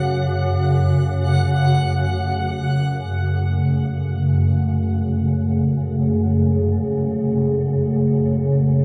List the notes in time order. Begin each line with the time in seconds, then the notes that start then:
Already playing: F#2 C#3 A3 G#4 F#5
1.76 F#2 C#3